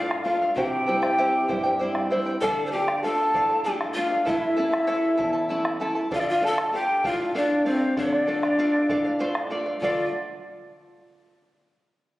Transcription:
Already playing: A2 A3 D4 F4 A4 D5 F5
0.11 bombo rim
0.23 A3 D4 F4 A4 D5 F5
0.27 F5
0.42 D5 F5
0.54 C3 E4 G4 C5 E5 G5, bombo low
0.87 G3 C4 E4 C5 E5 G5, bombo rim
1.02 E4 C5 G5, bombo rim
1.18 G3 C4 E4 G4 C5 E5 G5, bombo rim
1.48 G2 E4 C5 E5 G5, bombo rim, bombo low
1.63 E4 C5 G5
1.79 G3 C4 E4 C5 E5 G5
1.95 bombo rim
2.10 G3 C4 E4 C5 E5 G5
2.26 E4 C5 G5
2.41 D3 A4 D5 F5 A5, bombo low
2.65 C5 A5
2.72 A3 D4 F4 G4 A4 D5 F5 G5
2.88 D5 F5, bombo rim
3.03 A3 D4 F4 A4 D5 F5 A5, bombo rim
3.34 A2 A4 D5 F5, bombo low
3.49 D5 F5, bombo rim
3.64 A3 D4 F4 G4 A4 D5 F5 G5
3.81 bombo rim
3.94 A3 D4 F4 A4 D5 F5
3.98 F4
4.10 D5 F5
4.25 A2 E4 A4 E5 A5, bombo low
4.57 A3 C#4 E4 A4 E5 A5
4.71 E4 A4 A5, bombo rim
4.87 A3 C#4 E4 A4 C#5 E5 A5, bombo rim
5.17 E2 E4 A4 E5 A5, bombo low
5.33 E4 A4 A5, bombo rim
5.49 A3 C#4 E4 A4 E5 A5
5.65 bombo rim
5.80 A3 C#4 E4 A4 E5 A5
5.95 E4 A4 A5
6.11 D3 F4 A4 D5 F5, bombo low
6.19 F4 D5
6.28 F4 F5
6.41 A3 D4 F4 A4 D5 F5 A5
6.46 A4
6.58 D5 F5, bombo rim
6.73 A3 D4 F4 G4 A4 D5 F5 G5, bombo rim
7.04 A2 F4 A4 D5 F5, bombo low
7.20 D5 F5, bombo rim
7.35 A3 D4 F4 A4 D5 F5
7.65 A3 C4 D4 F4 A4 C5 D5 F5
7.80 D5 F5
7.97 D3 D4 A4 C#5 D5 F5, bombo rim, bombo low
8.12 D5, bombo rim
8.27 A3 D4 F4 A4 D5 F5
8.42 D5 F5, bombo rim
8.58 A3 D4 F4 A4 D5 F5, bombo rim
8.75 bombo rim
8.89 A2 A4 D5 F5, bombo rim, bombo low
9.04 D5 F5
9.19 A3 D4 F4 A4 C5 D5 F5
9.35 bombo rim
9.50 A3 D4 F4 A4 D5 F5
9.66 D5 F5
9.81 D3 A3 D4 F4 A4 D5 F5, bombo low

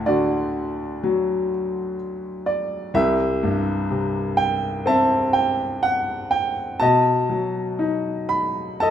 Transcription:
Already playing: D2 A2 F#5 A5
0.06 D3 F#4 D5
1.03 F#3
2.46 D5
2.94 C2 G4 E5
3.43 G2
3.91 C3
4.37 G5
4.86 C4 E5 A5
5.33 G5
5.83 F#5
6.31 G5
6.80 B2 D#5 A5
7.29 F#3
7.79 D#4
8.29 B5
8.80 A4 D#5 A5

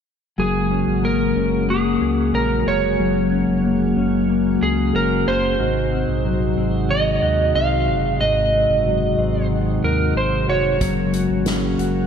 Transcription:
0.38 F#1 C#3 F#3 G#3 A#3 F#4 G#4
0.71 C#4
0.87 G#1
1.03 A#3 A#4
1.36 F#1 C#4
1.69 A#3 G#4
2.01 C#2 G#4
2.33 A#1 C#4 A#4
2.66 F1 G#4 C#5
2.99 F#1 F#3 G#4
3.32 C#4
3.48 F1
3.64 A#3
3.96 F#1 C#4
4.29 A#3
4.62 C#2 G#4
4.94 F#1 C#4 A#4
5.27 F#1 G#4 C5
5.59 G#1 G#2 C3 D#4 F#4
5.92 C4
6.08 A#1
6.25 F#3
6.57 G#1 C4
6.90 D#3 D#5
7.22 D#2 F#4
7.55 C2 C4 F5
7.88 F#1 F#4
8.20 G#1 G#2 F#4 D#5
8.53 C4
8.69 F#1
8.86 F#3
9.18 G#1 C4
9.51 D#3
9.83 D#2 F#4 A#4
10.16 G#1 C5
10.48 F1 F#4 C#5
10.81 F#1 C#3 F#3 A#3 A#4, kick, closed hi-hat
11.13 F#4, closed hi-hat
11.30 G#1
11.46 C#4, snare, closed hi-hat
11.78 F#1 F#4, closed hi-hat

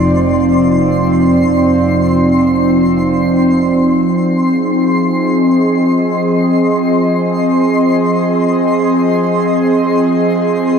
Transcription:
Already playing: F1 F3 C4 D#4 D5 C6
3.85 C6
4.23 G#4
5.04 D#5

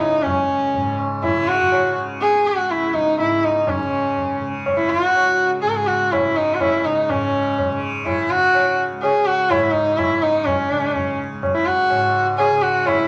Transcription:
Already playing: C#2 G#2 C#3 E4
0.00 D#4, tabla na
0.12 C#2
0.23 C#4, tabla na, tabla ge
0.38 C#4
0.74 G#2, tabla tin, tabla ge
0.99 tabla na
1.23 E4, tabla na, tabla ge
1.35 C#3 E4
1.48 F#4, tabla te
1.53 G#4
1.60 F#4, tabla ge
1.72 tabla na
1.97 C#3
2.21 G#4, tabla te
2.33 G#4, tabla te
2.45 F#4, tabla ke
2.57 C#2, tabla te
2.70 E4, tabla te
2.82 E4, tabla te
2.94 D#4, tabla ke
3.06 D#4, tabla te
3.19 G#2 E4, tabla te
3.31 E4, tabla te
3.43 D#4, tabla ke
3.54 D#4, tabla te
3.67 C#4, tabla na, tabla ge
3.72 D#4
3.78 C#3 C#4
4.16 tabla tin, tabla ge
4.41 C#3
4.66 tabla na, tabla ge
4.77 E4
4.89 E4 F4, tabla ge
5.01 C#2 F#4
5.15 tabla na
5.62 G#2 G#4, tabla te
5.68 A#4
5.76 G#4, tabla te
5.87 F#4, tabla ke
6.01 tabla te
6.12 E4, tabla na, tabla ge
6.24 C#3
6.36 D#4, tabla te
6.54 F#4
6.60 E4, tabla na, tabla ge
6.85 C#3 D#4, tabla te
7.09 G#2 C#4, tabla na, tabla ge
7.58 tabla tin, tabla ge
7.70 C#3
8.06 E4, tabla na, tabla ge
8.30 C#3 F#4, tabla ge
8.54 tabla na
8.92 C#2
9.02 G#4, tabla na
9.26 F#4
9.51 G#2 E4, tabla na, tabla ge
9.73 D#4
9.98 E4, tabla na, tabla ge
10.11 C#3
10.23 D#4, tabla te
10.45 C#4, tabla na, tabla ge
10.71 C#3
10.96 tabla tin, tabla ge
11.32 C#2
11.43 tabla na, tabla ge
11.55 E4
11.66 F#4, tabla ge
11.90 G#2, tabla na
12.38 G#4, tabla na
12.51 C#3
12.62 F#4
12.86 E4, tabla na, tabla ge

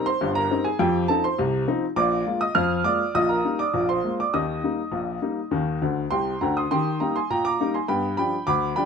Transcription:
0.06 C5 C6
0.21 G1 G2
0.35 A#4 A#5
0.51 G3 C4 D#4
0.65 G#4 G#5
0.79 F2 F3 G4 G5
1.08 F3 C4 D#4 A4 A5
1.24 C5 C6
1.38 C2 C3
1.68 F3 C4 D#4
1.96 A#1 A#2 D5 D6
2.26 G#3 A#3 F4
2.41 D#5 D#6
2.55 F2 F3 F5 F6
2.84 G#3 A#3 F4 D5 D6
3.15 A#1 A#2 D#5 D#6
3.29 A#4 A#5
3.45 G3 A#3 D#4
3.59 D5 D6
3.73 A#1 A#2
3.89 C5 C6
4.04 G#3 A#3 F4
4.20 D5 D6
4.34 D#2 D#3 D#5 D#6
4.63 G3 A#3 D#4
4.91 A#1 A#2
5.22 G3 A#3 D#4
5.51 D#2 D#3
5.82 D2 D3
6.11 C2 C3 G5 C6
6.41 D2 D3 G5 A#5
6.57 C6 D#6
6.71 D#3 G4 G5 C6
7.00 G3 A#3 D#4 G5 A#5
7.16 G#5 C6
7.30 A#2 G5 A#5
7.45 A#5 D6
7.60 G3 A#3 D#4
7.74 G#5 C6
7.88 G2 B3 G5 B5
8.17 F3 G3 D4 G5 B5
8.47 D2 B5 D6
8.76 F3 G3 D4 G5 B5

